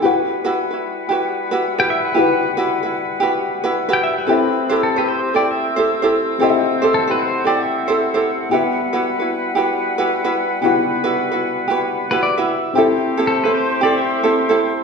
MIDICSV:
0, 0, Header, 1, 5, 480
1, 0, Start_track
1, 0, Key_signature, 1, "minor"
1, 0, Tempo, 530035
1, 34, Time_signature, 4, 2, 24, 8
1, 13435, End_track
2, 0, Start_track
2, 0, Title_t, "Pedal steel guitar"
2, 0, Program_c, 0, 26
2, 1628, Note_on_c, 0, 79, 89
2, 1717, Note_off_c, 0, 79, 0
2, 1722, Note_on_c, 0, 76, 90
2, 1855, Note_on_c, 0, 71, 90
2, 1858, Note_off_c, 0, 76, 0
2, 2544, Note_off_c, 0, 71, 0
2, 3562, Note_on_c, 0, 79, 84
2, 3646, Note_off_c, 0, 79, 0
2, 3654, Note_on_c, 0, 76, 83
2, 3785, Note_off_c, 0, 76, 0
2, 3789, Note_on_c, 0, 71, 87
2, 4376, Note_on_c, 0, 69, 74
2, 4472, Note_off_c, 0, 71, 0
2, 4506, Note_off_c, 0, 69, 0
2, 4509, Note_on_c, 0, 71, 75
2, 4599, Note_off_c, 0, 71, 0
2, 4604, Note_on_c, 0, 72, 98
2, 4831, Note_off_c, 0, 72, 0
2, 4854, Note_on_c, 0, 74, 78
2, 4985, Note_off_c, 0, 74, 0
2, 4989, Note_on_c, 0, 76, 69
2, 5671, Note_off_c, 0, 76, 0
2, 6288, Note_on_c, 0, 69, 81
2, 6422, Note_off_c, 0, 69, 0
2, 6439, Note_on_c, 0, 71, 84
2, 6524, Note_off_c, 0, 71, 0
2, 6538, Note_on_c, 0, 72, 84
2, 6758, Note_off_c, 0, 72, 0
2, 6763, Note_on_c, 0, 74, 75
2, 6899, Note_off_c, 0, 74, 0
2, 6909, Note_on_c, 0, 76, 62
2, 7591, Note_off_c, 0, 76, 0
2, 10966, Note_on_c, 0, 71, 79
2, 11064, Note_off_c, 0, 71, 0
2, 11073, Note_on_c, 0, 74, 85
2, 11207, Note_on_c, 0, 76, 77
2, 11211, Note_off_c, 0, 74, 0
2, 11532, Note_off_c, 0, 76, 0
2, 12021, Note_on_c, 0, 69, 81
2, 12164, Note_off_c, 0, 69, 0
2, 12169, Note_on_c, 0, 71, 72
2, 12264, Note_off_c, 0, 71, 0
2, 12268, Note_on_c, 0, 72, 89
2, 12499, Note_off_c, 0, 72, 0
2, 12526, Note_on_c, 0, 74, 77
2, 12657, Note_off_c, 0, 74, 0
2, 12658, Note_on_c, 0, 76, 70
2, 13341, Note_off_c, 0, 76, 0
2, 13435, End_track
3, 0, Start_track
3, 0, Title_t, "Felt piano"
3, 0, Program_c, 1, 0
3, 10, Note_on_c, 1, 64, 73
3, 20, Note_on_c, 1, 66, 73
3, 31, Note_on_c, 1, 67, 68
3, 41, Note_on_c, 1, 71, 70
3, 50, Note_on_c, 1, 78, 85
3, 204, Control_c, 1, 64, 127
3, 1911, Note_off_c, 1, 64, 0
3, 1916, Note_off_c, 1, 66, 0
3, 1922, Note_off_c, 1, 67, 0
3, 1927, Note_off_c, 1, 71, 0
3, 1931, Note_off_c, 1, 78, 0
3, 1948, Note_on_c, 1, 64, 75
3, 1960, Note_on_c, 1, 66, 69
3, 1970, Note_on_c, 1, 67, 63
3, 1976, Note_on_c, 1, 71, 66
3, 1983, Note_on_c, 1, 78, 80
3, 3840, Note_off_c, 1, 64, 0
3, 3846, Note_off_c, 1, 66, 0
3, 3851, Note_off_c, 1, 67, 0
3, 3854, Note_off_c, 1, 71, 0
3, 3857, Note_off_c, 1, 78, 0
3, 3869, Note_on_c, 1, 60, 83
3, 3877, Note_on_c, 1, 64, 72
3, 3879, Note_on_c, 1, 67, 68
3, 3894, Control_c, 1, 64, 0
3, 3894, Note_on_c, 1, 69, 68
3, 3897, Note_on_c, 1, 76, 80
3, 4066, Control_c, 1, 64, 127
3, 5760, Note_off_c, 1, 60, 0
3, 5764, Note_off_c, 1, 64, 0
3, 5765, Note_off_c, 1, 67, 0
3, 5772, Note_off_c, 1, 69, 0
3, 5773, Note_off_c, 1, 76, 0
3, 5785, Note_on_c, 1, 60, 76
3, 5791, Note_on_c, 1, 64, 70
3, 5801, Note_on_c, 1, 67, 72
3, 5813, Note_on_c, 1, 69, 73
3, 5823, Note_on_c, 1, 75, 77
3, 5879, Note_on_c, 1, 76, 84
3, 5882, Note_off_c, 1, 75, 0
3, 7676, Note_off_c, 1, 60, 0
3, 7679, Note_off_c, 1, 64, 0
3, 7684, Note_off_c, 1, 67, 0
3, 7690, Note_off_c, 1, 69, 0
3, 7691, Note_on_c, 1, 59, 81
3, 7698, Note_on_c, 1, 64, 66
3, 7707, Note_on_c, 1, 66, 66
3, 7712, Note_off_c, 1, 76, 0
3, 7717, Note_on_c, 1, 67, 66
3, 7725, Note_on_c, 1, 76, 78
3, 7734, Control_c, 1, 64, 0
3, 7864, Control_c, 1, 64, 127
3, 9588, Note_off_c, 1, 59, 0
3, 9591, Note_off_c, 1, 64, 0
3, 9596, Note_off_c, 1, 66, 0
3, 9601, Note_off_c, 1, 67, 0
3, 9605, Note_off_c, 1, 76, 0
3, 9611, Note_on_c, 1, 59, 84
3, 9625, Note_on_c, 1, 64, 73
3, 9631, Note_on_c, 1, 66, 69
3, 9640, Note_on_c, 1, 67, 80
3, 9646, Note_on_c, 1, 78, 84
3, 11506, Note_off_c, 1, 59, 0
3, 11512, Note_off_c, 1, 64, 0
3, 11516, Note_off_c, 1, 66, 0
3, 11520, Note_off_c, 1, 67, 0
3, 11523, Note_off_c, 1, 78, 0
3, 11533, Note_on_c, 1, 60, 77
3, 11544, Note_on_c, 1, 64, 78
3, 11549, Note_on_c, 1, 67, 75
3, 11564, Note_on_c, 1, 69, 75
3, 11567, Note_on_c, 1, 76, 84
3, 11568, Control_c, 1, 64, 0
3, 11704, Control_c, 1, 64, 127
3, 13425, Note_off_c, 1, 60, 0
3, 13430, Note_off_c, 1, 64, 0
3, 13433, Note_off_c, 1, 67, 0
3, 13435, Note_off_c, 1, 69, 0
3, 13435, Note_off_c, 1, 76, 0
3, 13435, End_track
4, 0, Start_track
4, 0, Title_t, "Ukulele"
4, 0, Program_c, 2, 24
4, 20, Note_on_c, 2, 67, 60
4, 36, Note_on_c, 2, 64, 64
4, 39, Note_on_c, 2, 66, 70
4, 48, Note_on_c, 2, 71, 68
4, 392, Note_off_c, 2, 71, 0
4, 399, Note_off_c, 2, 66, 0
4, 403, Note_on_c, 2, 71, 83
4, 406, Note_off_c, 2, 64, 0
4, 410, Note_on_c, 2, 66, 84
4, 413, Note_off_c, 2, 67, 0
4, 417, Note_on_c, 2, 64, 80
4, 422, Note_on_c, 2, 67, 72
4, 629, Note_off_c, 2, 71, 0
4, 636, Note_off_c, 2, 67, 0
4, 640, Note_on_c, 2, 71, 60
4, 646, Note_off_c, 2, 66, 0
4, 653, Note_off_c, 2, 64, 0
4, 657, Note_on_c, 2, 66, 60
4, 666, Note_on_c, 2, 64, 51
4, 981, Note_off_c, 2, 71, 0
4, 984, Note_on_c, 2, 67, 65
4, 988, Note_off_c, 2, 64, 0
4, 996, Note_off_c, 2, 66, 0
4, 999, Note_on_c, 2, 64, 66
4, 1005, Note_on_c, 2, 66, 77
4, 1014, Note_on_c, 2, 71, 70
4, 1358, Note_off_c, 2, 71, 0
4, 1367, Note_off_c, 2, 66, 0
4, 1369, Note_on_c, 2, 71, 75
4, 1371, Note_off_c, 2, 64, 0
4, 1376, Note_off_c, 2, 67, 0
4, 1378, Note_on_c, 2, 66, 83
4, 1382, Note_on_c, 2, 64, 69
4, 1388, Note_on_c, 2, 67, 74
4, 1605, Note_off_c, 2, 71, 0
4, 1608, Note_off_c, 2, 66, 0
4, 1615, Note_off_c, 2, 64, 0
4, 1616, Note_on_c, 2, 71, 81
4, 1618, Note_on_c, 2, 66, 83
4, 1621, Note_off_c, 2, 67, 0
4, 1626, Note_on_c, 2, 64, 63
4, 1632, Note_on_c, 2, 67, 65
4, 1930, Note_off_c, 2, 67, 0
4, 1937, Note_off_c, 2, 64, 0
4, 1941, Note_on_c, 2, 67, 65
4, 1948, Note_on_c, 2, 64, 69
4, 1949, Note_off_c, 2, 66, 0
4, 1952, Note_off_c, 2, 71, 0
4, 1960, Note_on_c, 2, 66, 70
4, 1963, Note_on_c, 2, 71, 72
4, 2317, Note_off_c, 2, 71, 0
4, 2324, Note_off_c, 2, 66, 0
4, 2328, Note_off_c, 2, 64, 0
4, 2328, Note_on_c, 2, 71, 85
4, 2335, Note_off_c, 2, 67, 0
4, 2335, Note_on_c, 2, 66, 85
4, 2339, Note_on_c, 2, 64, 79
4, 2349, Note_on_c, 2, 67, 85
4, 2550, Note_off_c, 2, 71, 0
4, 2561, Note_on_c, 2, 71, 62
4, 2565, Note_off_c, 2, 66, 0
4, 2576, Note_on_c, 2, 66, 50
4, 2578, Note_off_c, 2, 64, 0
4, 2587, Note_off_c, 2, 67, 0
4, 2588, Note_on_c, 2, 64, 49
4, 2898, Note_on_c, 2, 67, 75
4, 2904, Note_off_c, 2, 64, 0
4, 2909, Note_off_c, 2, 66, 0
4, 2909, Note_off_c, 2, 71, 0
4, 2914, Note_on_c, 2, 64, 75
4, 2920, Note_on_c, 2, 66, 76
4, 2924, Note_on_c, 2, 71, 76
4, 3282, Note_off_c, 2, 71, 0
4, 3289, Note_off_c, 2, 66, 0
4, 3293, Note_off_c, 2, 64, 0
4, 3293, Note_on_c, 2, 71, 89
4, 3294, Note_off_c, 2, 67, 0
4, 3300, Note_on_c, 2, 66, 82
4, 3304, Note_on_c, 2, 64, 81
4, 3310, Note_on_c, 2, 67, 68
4, 3509, Note_off_c, 2, 71, 0
4, 3518, Note_off_c, 2, 66, 0
4, 3520, Note_off_c, 2, 64, 0
4, 3520, Note_on_c, 2, 71, 86
4, 3529, Note_on_c, 2, 66, 84
4, 3530, Note_off_c, 2, 67, 0
4, 3531, Note_on_c, 2, 64, 73
4, 3541, Note_on_c, 2, 67, 64
4, 3859, Note_off_c, 2, 71, 0
4, 3861, Note_off_c, 2, 64, 0
4, 3863, Note_on_c, 2, 69, 72
4, 3868, Note_off_c, 2, 66, 0
4, 3872, Note_on_c, 2, 64, 69
4, 3873, Note_off_c, 2, 67, 0
4, 3884, Note_on_c, 2, 67, 63
4, 4247, Note_off_c, 2, 67, 0
4, 4247, Note_off_c, 2, 69, 0
4, 4251, Note_on_c, 2, 72, 91
4, 4253, Note_off_c, 2, 64, 0
4, 4257, Note_on_c, 2, 67, 94
4, 4264, Note_on_c, 2, 64, 86
4, 4271, Note_on_c, 2, 69, 74
4, 4482, Note_off_c, 2, 72, 0
4, 4493, Note_on_c, 2, 72, 70
4, 4500, Note_off_c, 2, 67, 0
4, 4505, Note_off_c, 2, 64, 0
4, 4507, Note_off_c, 2, 69, 0
4, 4510, Note_on_c, 2, 67, 59
4, 4521, Note_on_c, 2, 64, 58
4, 4831, Note_off_c, 2, 64, 0
4, 4831, Note_off_c, 2, 67, 0
4, 4835, Note_on_c, 2, 69, 66
4, 4836, Note_off_c, 2, 72, 0
4, 4842, Note_on_c, 2, 64, 74
4, 4850, Note_on_c, 2, 67, 79
4, 4860, Note_on_c, 2, 72, 69
4, 5208, Note_off_c, 2, 72, 0
4, 5215, Note_off_c, 2, 67, 0
4, 5219, Note_off_c, 2, 64, 0
4, 5219, Note_on_c, 2, 72, 89
4, 5222, Note_off_c, 2, 69, 0
4, 5226, Note_on_c, 2, 67, 80
4, 5229, Note_on_c, 2, 64, 80
4, 5239, Note_on_c, 2, 69, 68
4, 5442, Note_off_c, 2, 72, 0
4, 5449, Note_off_c, 2, 67, 0
4, 5453, Note_on_c, 2, 72, 82
4, 5455, Note_off_c, 2, 64, 0
4, 5458, Note_off_c, 2, 69, 0
4, 5460, Note_on_c, 2, 67, 87
4, 5466, Note_on_c, 2, 64, 83
4, 5469, Note_on_c, 2, 69, 70
4, 5780, Note_off_c, 2, 69, 0
4, 5786, Note_off_c, 2, 64, 0
4, 5787, Note_off_c, 2, 72, 0
4, 5791, Note_on_c, 2, 69, 69
4, 5796, Note_off_c, 2, 67, 0
4, 5797, Note_on_c, 2, 64, 73
4, 5807, Note_on_c, 2, 67, 70
4, 5815, Note_off_c, 2, 69, 0
4, 5819, Note_on_c, 2, 72, 80
4, 6163, Note_off_c, 2, 72, 0
4, 6171, Note_off_c, 2, 67, 0
4, 6173, Note_on_c, 2, 72, 88
4, 6175, Note_off_c, 2, 64, 0
4, 6181, Note_on_c, 2, 67, 80
4, 6185, Note_on_c, 2, 64, 76
4, 6191, Note_on_c, 2, 69, 83
4, 6396, Note_off_c, 2, 72, 0
4, 6407, Note_on_c, 2, 72, 65
4, 6411, Note_off_c, 2, 67, 0
4, 6418, Note_off_c, 2, 69, 0
4, 6422, Note_on_c, 2, 67, 50
4, 6426, Note_off_c, 2, 64, 0
4, 6436, Note_on_c, 2, 64, 45
4, 6738, Note_off_c, 2, 64, 0
4, 6738, Note_off_c, 2, 67, 0
4, 6742, Note_on_c, 2, 69, 69
4, 6749, Note_on_c, 2, 64, 72
4, 6752, Note_off_c, 2, 72, 0
4, 6760, Note_on_c, 2, 67, 76
4, 6768, Note_on_c, 2, 72, 80
4, 7122, Note_off_c, 2, 72, 0
4, 7129, Note_off_c, 2, 67, 0
4, 7133, Note_on_c, 2, 72, 84
4, 7135, Note_off_c, 2, 69, 0
4, 7136, Note_off_c, 2, 64, 0
4, 7140, Note_on_c, 2, 67, 77
4, 7147, Note_on_c, 2, 64, 76
4, 7152, Note_on_c, 2, 69, 73
4, 7361, Note_off_c, 2, 72, 0
4, 7367, Note_off_c, 2, 67, 0
4, 7372, Note_on_c, 2, 72, 76
4, 7373, Note_off_c, 2, 64, 0
4, 7377, Note_off_c, 2, 69, 0
4, 7378, Note_on_c, 2, 67, 75
4, 7383, Note_on_c, 2, 64, 64
4, 7388, Note_on_c, 2, 69, 61
4, 7697, Note_off_c, 2, 67, 0
4, 7707, Note_off_c, 2, 64, 0
4, 7708, Note_on_c, 2, 67, 64
4, 7714, Note_off_c, 2, 72, 0
4, 7718, Note_on_c, 2, 64, 64
4, 7719, Note_off_c, 2, 69, 0
4, 7723, Note_on_c, 2, 66, 68
4, 7734, Note_on_c, 2, 71, 65
4, 8075, Note_off_c, 2, 71, 0
4, 8081, Note_off_c, 2, 66, 0
4, 8085, Note_on_c, 2, 71, 83
4, 8086, Note_off_c, 2, 64, 0
4, 8092, Note_on_c, 2, 66, 83
4, 8096, Note_off_c, 2, 67, 0
4, 8096, Note_on_c, 2, 64, 74
4, 8107, Note_on_c, 2, 67, 72
4, 8315, Note_off_c, 2, 71, 0
4, 8322, Note_off_c, 2, 67, 0
4, 8326, Note_on_c, 2, 71, 66
4, 8330, Note_off_c, 2, 66, 0
4, 8336, Note_off_c, 2, 64, 0
4, 8341, Note_on_c, 2, 66, 62
4, 8347, Note_on_c, 2, 64, 51
4, 8646, Note_off_c, 2, 71, 0
4, 8650, Note_on_c, 2, 67, 72
4, 8651, Note_off_c, 2, 64, 0
4, 8656, Note_off_c, 2, 66, 0
4, 8662, Note_on_c, 2, 64, 70
4, 8667, Note_on_c, 2, 66, 81
4, 8676, Note_on_c, 2, 71, 78
4, 9028, Note_off_c, 2, 71, 0
4, 9035, Note_off_c, 2, 66, 0
4, 9036, Note_off_c, 2, 64, 0
4, 9039, Note_on_c, 2, 71, 89
4, 9045, Note_off_c, 2, 67, 0
4, 9046, Note_on_c, 2, 66, 81
4, 9047, Note_on_c, 2, 64, 70
4, 9056, Note_on_c, 2, 67, 69
4, 9267, Note_off_c, 2, 71, 0
4, 9270, Note_off_c, 2, 66, 0
4, 9277, Note_off_c, 2, 64, 0
4, 9278, Note_on_c, 2, 71, 92
4, 9281, Note_on_c, 2, 66, 80
4, 9285, Note_off_c, 2, 67, 0
4, 9288, Note_on_c, 2, 64, 69
4, 9295, Note_on_c, 2, 67, 64
4, 9605, Note_off_c, 2, 67, 0
4, 9616, Note_on_c, 2, 67, 60
4, 9621, Note_off_c, 2, 64, 0
4, 9626, Note_off_c, 2, 71, 0
4, 9628, Note_off_c, 2, 66, 0
4, 9632, Note_on_c, 2, 64, 69
4, 9639, Note_on_c, 2, 66, 66
4, 9649, Note_on_c, 2, 71, 74
4, 9985, Note_off_c, 2, 71, 0
4, 9992, Note_off_c, 2, 66, 0
4, 9996, Note_on_c, 2, 71, 86
4, 9998, Note_off_c, 2, 64, 0
4, 10003, Note_on_c, 2, 66, 85
4, 10009, Note_on_c, 2, 64, 75
4, 10011, Note_off_c, 2, 67, 0
4, 10020, Note_on_c, 2, 67, 76
4, 10236, Note_off_c, 2, 71, 0
4, 10247, Note_on_c, 2, 71, 70
4, 10250, Note_off_c, 2, 66, 0
4, 10255, Note_off_c, 2, 64, 0
4, 10261, Note_off_c, 2, 67, 0
4, 10261, Note_on_c, 2, 66, 63
4, 10275, Note_on_c, 2, 64, 55
4, 10574, Note_on_c, 2, 67, 66
4, 10579, Note_off_c, 2, 64, 0
4, 10586, Note_off_c, 2, 66, 0
4, 10590, Note_off_c, 2, 71, 0
4, 10590, Note_on_c, 2, 64, 78
4, 10597, Note_on_c, 2, 66, 81
4, 10605, Note_on_c, 2, 71, 89
4, 10955, Note_off_c, 2, 71, 0
4, 10960, Note_off_c, 2, 66, 0
4, 10964, Note_off_c, 2, 64, 0
4, 10966, Note_on_c, 2, 71, 76
4, 10969, Note_off_c, 2, 67, 0
4, 10971, Note_on_c, 2, 66, 74
4, 10975, Note_on_c, 2, 64, 76
4, 10982, Note_on_c, 2, 67, 73
4, 11197, Note_off_c, 2, 71, 0
4, 11205, Note_off_c, 2, 66, 0
4, 11208, Note_on_c, 2, 71, 89
4, 11211, Note_off_c, 2, 64, 0
4, 11215, Note_off_c, 2, 67, 0
4, 11216, Note_on_c, 2, 66, 79
4, 11222, Note_on_c, 2, 64, 72
4, 11225, Note_on_c, 2, 67, 62
4, 11538, Note_off_c, 2, 67, 0
4, 11548, Note_on_c, 2, 67, 64
4, 11549, Note_off_c, 2, 71, 0
4, 11553, Note_off_c, 2, 66, 0
4, 11557, Note_off_c, 2, 64, 0
4, 11561, Note_on_c, 2, 60, 70
4, 11567, Note_on_c, 2, 64, 70
4, 11576, Note_on_c, 2, 69, 67
4, 11920, Note_off_c, 2, 69, 0
4, 11926, Note_off_c, 2, 64, 0
4, 11930, Note_on_c, 2, 69, 86
4, 11933, Note_off_c, 2, 60, 0
4, 11935, Note_off_c, 2, 67, 0
4, 11937, Note_on_c, 2, 64, 82
4, 11944, Note_on_c, 2, 60, 73
4, 11947, Note_on_c, 2, 67, 80
4, 12169, Note_off_c, 2, 69, 0
4, 12177, Note_off_c, 2, 64, 0
4, 12180, Note_on_c, 2, 69, 60
4, 12181, Note_off_c, 2, 60, 0
4, 12182, Note_off_c, 2, 67, 0
4, 12189, Note_on_c, 2, 64, 64
4, 12204, Note_on_c, 2, 60, 55
4, 12505, Note_off_c, 2, 60, 0
4, 12505, Note_on_c, 2, 67, 77
4, 12514, Note_off_c, 2, 64, 0
4, 12515, Note_off_c, 2, 69, 0
4, 12516, Note_on_c, 2, 60, 68
4, 12525, Note_on_c, 2, 64, 79
4, 12538, Note_on_c, 2, 69, 76
4, 12880, Note_off_c, 2, 69, 0
4, 12891, Note_off_c, 2, 60, 0
4, 12891, Note_off_c, 2, 64, 0
4, 12891, Note_on_c, 2, 69, 83
4, 12893, Note_off_c, 2, 67, 0
4, 12902, Note_on_c, 2, 60, 79
4, 12902, Note_on_c, 2, 64, 79
4, 12908, Note_on_c, 2, 67, 68
4, 13112, Note_off_c, 2, 69, 0
4, 13123, Note_on_c, 2, 69, 82
4, 13125, Note_off_c, 2, 64, 0
4, 13129, Note_off_c, 2, 60, 0
4, 13136, Note_on_c, 2, 64, 81
4, 13138, Note_off_c, 2, 67, 0
4, 13140, Note_on_c, 2, 60, 74
4, 13149, Note_on_c, 2, 67, 65
4, 13435, Note_off_c, 2, 60, 0
4, 13435, Note_off_c, 2, 64, 0
4, 13435, Note_off_c, 2, 67, 0
4, 13435, Note_off_c, 2, 69, 0
4, 13435, End_track
5, 0, Start_track
5, 0, Title_t, "Woodwind section"
5, 0, Program_c, 3, 71
5, 20, Note_on_c, 3, 64, 61
5, 23, Note_on_c, 3, 71, 86
5, 24, Note_on_c, 3, 55, 82
5, 24, Note_on_c, 3, 78, 68
5, 3840, Note_off_c, 3, 55, 0
5, 3840, Note_off_c, 3, 71, 0
5, 3840, Note_off_c, 3, 78, 0
5, 3878, Note_on_c, 3, 60, 96
5, 3879, Note_on_c, 3, 67, 68
5, 3883, Note_on_c, 3, 57, 74
5, 5638, Note_off_c, 3, 67, 0
5, 5792, Note_on_c, 3, 78, 76
5, 7683, Note_off_c, 3, 60, 0
5, 7685, Note_off_c, 3, 57, 0
5, 7707, Note_on_c, 3, 55, 73
5, 7709, Note_on_c, 3, 71, 89
5, 11404, Note_off_c, 3, 55, 0
5, 11404, Note_off_c, 3, 64, 0
5, 11404, Note_off_c, 3, 71, 0
5, 11404, Note_off_c, 3, 78, 0
5, 11558, Note_on_c, 3, 67, 75
5, 11559, Note_on_c, 3, 57, 74
5, 11562, Note_on_c, 3, 72, 97
5, 11566, Note_on_c, 3, 64, 70
5, 13435, Note_off_c, 3, 57, 0
5, 13435, Note_off_c, 3, 64, 0
5, 13435, Note_off_c, 3, 67, 0
5, 13435, Note_off_c, 3, 72, 0
5, 13435, End_track
0, 0, End_of_file